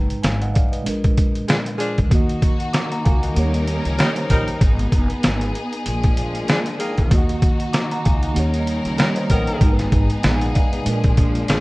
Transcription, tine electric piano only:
0.00 0.82 G#2 medium
0.00 0.83 G#3 medium
0.00 0.85 D#4 medium
0.00 0.28 B4 medium
0.23 0.40 F5 medium
0.23 0.40 G#5 medium
0.42 0.55 D#5 medium
0.42 0.54 F#5 medium
0.54 0.71 D5 medium
0.54 0.71 F5 medium
0.72 1.02 B4 medium
0.72 1.02 D#5 medium
0.82 2.06 A#2 medium
0.82 2.08 G#3 medium
0.87 2.09 D4 medium
0.87 2.10 A#4 medium
2.08 3.30 D#3 medium
2.08 3.33 A#3 medium
2.13 3.34 F#4 medium
2.13 2.44 D#5 medium
2.73 2.90 A#5 medium
2.73 2.90 D6 medium
2.92 3.05 F#5 medium
2.92 3.05 A#5 medium
3.04 3.22 F5 medium
3.04 3.21 G#5 medium
3.23 3.53 D#5 medium
3.23 3.52 F#5 medium
3.32 4.56 D#3 medium
3.32 4.58 A#3 medium
3.36 4.59 G4 medium
3.36 3.97 C#5 medium
3.98 4.15 A#4 medium
3.98 4.15 C#5 medium
4.16 4.30 C5 medium
4.16 4.29 D#5 medium
4.32 4.48 D#5 medium
4.32 4.47 G5 medium
4.47 4.61 G5 medium
4.47 4.60 A#5 medium
7.08 8.30 D#3 medium
7.08 8.33 A#3 medium
7.13 8.34 F#4 medium
7.13 7.44 D#5 medium
7.73 7.90 A#5 medium
7.73 7.90 D6 medium
7.92 8.05 F#5 medium
7.92 8.05 A#5 medium
8.04 8.21 F5 medium
8.04 8.21 G#5 medium
8.23 8.53 D#5 medium
8.23 8.52 F#5 medium
8.32 9.56 D#3 medium
8.32 9.58 A#3 medium
8.37 9.59 G4 medium
8.37 8.97 C#5 medium
8.98 9.15 A#4 medium
8.98 9.15 C#5 medium
9.16 9.30 C5 medium
9.16 9.29 D#5 medium
9.32 9.48 D#5 medium
9.32 9.47 G5 medium
9.48 9.78 G5 medium
9.48 9.77 A#5 medium
9.58 10.82 G#2 medium
9.58 10.83 G#3 medium
9.63 10.85 D#4 medium
9.63 9.71 A#4 medium
9.72 10.28 B4 medium
10.23 10.40 F5 medium
10.23 10.40 G#5 medium
10.42 10.55 D#5 medium
10.42 10.54 F#5 medium
10.54 10.71 D5 medium
10.54 10.71 F5 medium
10.72 11.02 B4 medium
10.72 11.02 D#5 medium
10.82 11.60 A#2 medium
10.82 11.60 G#3 medium
10.87 11.60 D4 medium
10.87 11.60 A#4 medium

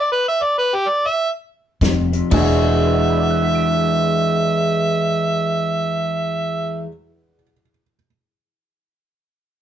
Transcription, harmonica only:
0.00 0.12 D5 medium
0.12 0.26 B4 medium
0.28 0.44 E5 loud
0.42 0.56 D5 medium
0.58 0.76 B4 medium
0.75 0.90 G4 medium
0.88 1.08 D5 medium
1.07 1.29 E5 loud
2.33 6.84 E5 medium

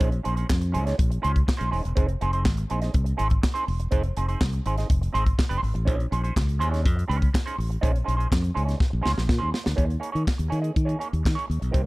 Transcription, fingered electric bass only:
0.01 0.18 A#1 loud
0.26 0.43 A#1 medium
0.50 0.76 F2 medium
0.75 0.92 C#2 medium
0.99 1.17 A#1 medium
1.25 1.42 C#2 medium
1.61 1.69 A#1 medium
1.73 1.81 D#1 loud
1.85 1.94 E1 medium
1.97 2.15 F1 medium
2.22 2.46 F1 loud
2.46 2.63 G#1 medium
2.71 2.88 A#1 medium
2.95 3.12 C2 loud
3.20 3.37 G#1 loud
3.68 3.85 E1 loud
3.93 4.10 F1 loud
4.17 4.34 F1 loud
4.41 4.59 C2 medium
4.66 4.83 G#1 medium
4.90 5.08 F1 loud
5.14 5.32 G#1 loud
5.51 5.60 F1 medium
5.63 5.72 G#1 medium
5.75 5.88 A1 medium
5.88 6.05 A#1 loud
6.12 6.29 A#1 loud
6.37 6.61 C#2 loud
6.61 6.86 D#2 medium
6.86 7.03 F2 loud
7.09 7.27 C#2 loud
7.58 7.76 A1 medium
7.83 8.01 A#1 loud
8.08 8.25 A#1 loud
8.32 8.50 F2 loud
8.56 8.74 C#2 medium
8.93 9.02 A#1 medium
9.05 9.14 C#2 medium
9.18 9.26 A#1 medium
9.29 9.38 A#2 loud
9.42 9.51 D#2 medium
9.67 9.75 D2 medium
9.78 9.96 D#2 loud
10.15 10.24 D#3 medium
10.39 10.48 D#2 medium
10.52 10.69 D#3 medium
10.77 10.94 D#3 loud
11.13 11.22 D#2 medium
11.26 11.34 D#3 loud
11.50 11.58 D#2 loud
11.62 11.71 B1 medium
11.75 11.86 C2 loud

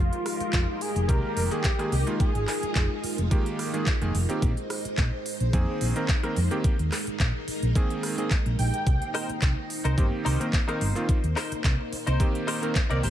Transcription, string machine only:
0.00 8.83 G#3 medium
0.00 4.38 D#4 medium
0.00 2.18 G4 medium
0.00 4.38 A#4 medium
2.20 4.40 F4 medium
4.42 12.99 D#4 medium
4.42 6.62 C5 medium
6.64 8.84 A#4 medium
8.86 13.10 A#3 medium
8.86 13.10 C5 medium
13.03 13.10 G4 medium

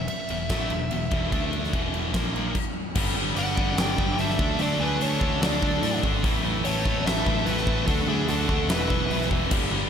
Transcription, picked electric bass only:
0.30 0.49 E1 medium
0.50 0.69 A1 medium
0.70 0.90 E1 medium
0.92 1.10 E1 medium
1.12 1.31 E1 medium
1.32 1.70 D2 medium
1.73 2.11 E1 medium
2.14 2.52 A#1 medium
2.96 3.14 G1 loud
3.16 3.34 G1 medium
3.35 3.54 G1 medium
3.57 3.75 G1 medium
3.77 3.96 G1 loud
3.98 4.17 G1 loud
4.18 4.36 G1 medium
4.39 4.57 D2 medium
4.59 4.77 D2 loud
4.79 4.97 D2 medium
5.00 5.18 D2 medium
5.21 5.39 D2 medium
5.41 5.59 D2 loud
5.62 5.80 D2 loud
5.83 6.01 A2 medium
6.04 6.22 G#1 medium
6.23 6.42 A1 loud
6.43 6.62 A1 medium
6.64 6.82 A1 medium
6.86 7.03 A1 medium
7.04 7.23 A1 loud
7.26 7.44 A1 loud
7.46 7.64 A1 loud
7.67 7.85 A1 medium
7.88 8.06 D2 loud
8.07 8.26 D2 medium
8.28 8.46 D2 medium
8.49 8.67 D2 medium
8.69 8.87 E1 loud
8.90 9.08 E1 medium
9.10 9.28 B1 medium
9.30 9.49 E1 medium
9.52 9.70 G1 loud
9.71 9.89 G1 medium

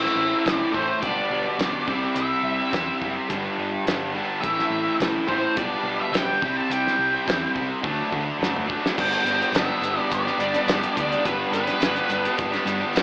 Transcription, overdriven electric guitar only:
0.00 0.71 A2 medium
0.00 0.72 E3 medium
0.00 0.71 A3 loud
0.72 1.01 A2 medium
0.72 1.00 E3 medium
0.72 1.00 A3 medium
1.00 1.85 G2 medium
1.00 1.86 D3 medium
1.00 1.86 G3 loud
1.87 2.70 C3 medium
1.87 2.71 G3 medium
1.87 2.72 C4 medium
2.71 3.27 C3 medium
2.71 3.28 G3 medium
2.71 3.29 C4 medium
3.27 4.12 G2 medium
3.27 4.13 D3 loud
3.27 4.12 G3 loud
4.14 4.43 G2 medium
4.14 4.41 D3 medium
4.14 4.41 G3 medium
4.42 5.26 A2 medium
4.42 5.26 E3 loud
4.42 5.25 A3 medium
5.27 5.55 A2 medium
5.27 5.55 E3 medium
5.27 5.54 A3 medium
5.56 6.39 G2 medium
5.56 6.41 D3 loud
5.56 6.41 G3 loud
6.41 7.25 C3 medium
6.41 7.26 G3 medium
6.41 7.26 C4 medium
7.26 7.81 C3 medium
7.26 7.82 G3 medium
7.26 7.83 C4 medium
7.83 8.67 D3 medium
7.83 8.67 A3 loud
7.83 8.66 D4 loud
8.68 8.97 D3 medium
8.68 8.96 A3 medium
8.68 8.95 D4 medium
8.97 9.53 G2 medium
8.97 9.24 D3 medium
8.97 9.25 G3 medium
8.97 9.27 B3 loud
8.97 9.27 D4 loud
9.25 9.53 D3 medium
9.25 9.55 G3 medium
9.25 9.56 B3 medium
9.25 9.56 D4 medium
9.54 10.67 G2 medium
9.54 9.82 D3 medium
9.54 9.72 G3 medium
9.54 9.71 B3 loud
9.54 9.69 D4 medium
9.69 9.84 G3 medium
9.69 9.85 B3 medium
9.69 9.86 D4 medium
9.84 10.26 D3 medium
9.84 10.00 G3 medium
9.84 9.98 B3 medium
9.84 9.96 D4 medium
9.97 10.28 G3 medium
9.97 10.26 B3 medium
9.97 10.25 D4 medium
10.26 10.41 G3 medium
10.26 10.41 B3 medium
10.26 10.42 D4 medium
10.40 10.68 D3 medium
10.40 10.57 G3 medium
10.40 10.55 B3 medium
10.40 10.53 D4 medium
10.54 10.70 G3 medium
10.54 10.69 B3 medium
10.54 10.70 D4 medium
10.68 11.23 G2 medium
10.68 10.96 D3 medium
10.68 10.98 G3 medium
10.68 10.98 B3 medium
10.68 10.99 D4 loud
10.97 11.24 D3 medium
10.97 11.13 G3 medium
10.97 11.11 B3 medium
10.97 11.10 D4 medium
11.11 11.26 G3 medium
11.11 11.26 B3 medium
11.11 11.26 D4 medium
11.25 11.79 G2 loud
11.25 11.52 D3 loud
11.25 11.53 G3 loud
11.25 11.54 B3 medium
11.25 11.55 D4 loud
11.53 11.81 D3 medium
11.53 11.82 G3 medium
11.53 11.82 B3 medium
11.53 11.83 D4 medium
11.81 12.23 G2 medium
11.81 12.08 D3 medium
11.81 11.96 G3 loud
11.81 11.95 B3 medium
11.81 11.93 D4 loud
11.95 12.10 G3 medium
11.95 12.10 B3 medium
11.95 12.11 D4 medium
12.09 12.52 D3 medium
12.09 12.27 G3 medium
12.09 12.25 B3 medium
12.09 12.23 D4 medium
12.24 12.54 G3 medium
12.24 12.52 B3 medium
12.24 12.50 D4 medium
12.51 12.66 G3 medium
12.51 12.66 B3 medium
12.51 12.67 D4 medium
12.65 12.93 D3 medium
12.65 12.83 G3 medium
12.65 12.81 B3 medium
12.65 12.79 D4 medium
12.80 12.95 G3 medium
12.80 12.95 B3 medium
12.80 12.95 D4 medium
12.94 13.03 G2 medium
12.94 13.03 D3 medium
12.94 13.03 G3 loud
12.94 13.03 B3 loud
12.94 13.03 D4 loud

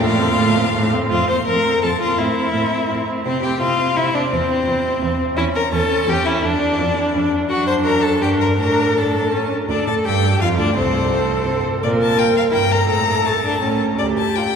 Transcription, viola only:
0.01 0.20 A3 medium
0.18 0.39 C4 soft
0.38 0.59 A3 soft
0.57 0.73 C4 soft
0.74 0.95 A3 soft
0.94 1.11 C4 soft
1.12 1.29 C4 soft
1.30 1.47 C4 soft
1.48 1.65 C4 soft
1.66 1.83 C4 soft
1.83 2.01 C4 soft
2.01 2.18 C4 soft
2.19 2.36 C4 soft
2.38 2.53 C4 soft
2.54 2.72 C4 soft
2.73 2.90 C4 soft
2.91 3.08 C4 soft
3.08 3.25 C4 soft
3.26 3.42 C4 soft
3.43 3.59 C4 soft
3.60 3.78 C4 soft
3.79 3.96 C4 soft
3.97 4.14 C4 soft
4.14 4.31 C4 soft
4.32 4.48 C4 soft
4.49 4.65 C4 soft
4.66 4.84 C4 soft
4.84 5.01 C4 soft
5.01 5.18 C4 soft
5.18 5.36 C4 soft
5.37 5.53 C#4 soft
5.54 5.72 C#4 soft
5.73 5.89 C#4 soft
5.90 6.07 C#4 soft
6.08 6.25 C#4 soft
6.26 6.42 C#4 soft
6.43 6.61 D4 medium
6.61 6.77 D4 soft
6.78 6.95 D4 soft
6.96 7.14 D4 soft
7.15 7.32 D4 soft
7.33 7.50 D4 soft
7.51 8.18 D4 soft
8.23 8.58 D4 soft
8.59 8.95 D4 soft
8.96 9.32 D4 soft
9.32 9.50 C#4 soft
9.69 10.42 A4 soft
10.41 10.76 F4 soft
10.77 11.11 A4 medium
11.12 11.81 A4 medium
11.82 12.51 A#4 medium
12.52 12.88 A#4 medium
12.89 13.79 A4 soft
13.98 14.56 G4 medium

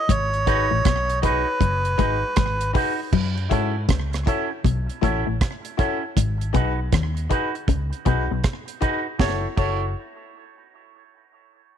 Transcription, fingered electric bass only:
0.10 0.67 G#1 medium
0.72 0.84 A1 medium
0.86 1.44 B1 medium
1.61 1.95 F#1 loud
2.00 2.21 G#1 medium
2.38 2.72 G#1 medium
3.13 3.47 F#2 loud
3.52 3.86 G#2 medium
3.90 4.24 C#2 medium
4.65 4.87 B1 loud
5.04 5.25 A1 medium
5.28 5.39 A1 medium
6.17 6.51 G#1 loud
6.55 6.89 B1 medium
6.93 7.27 D#2 medium
7.69 7.91 C#2 medium
8.07 8.28 B1 medium
8.31 8.43 B1 medium
9.20 9.45 F#1 medium
9.58 9.93 F#1 medium

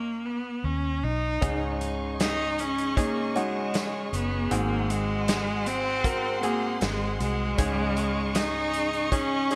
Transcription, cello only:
0.00 0.27 A#3 medium
0.26 0.66 B3 medium
0.64 1.06 C#4 medium
1.04 1.82 D#4 medium
2.21 2.61 D#4 medium
2.60 3.00 C#4 medium
2.98 3.38 A#3 medium
3.36 4.13 G#3 medium
4.14 4.53 B3 medium
4.52 4.92 A#3 medium
4.90 5.68 G#3 medium
5.67 6.43 C4 loud
6.43 6.79 A#3 medium
6.82 7.17 G#3 medium
7.21 8.38 G#3 loud
8.36 9.14 D#4 loud
9.13 9.55 C#4 loud

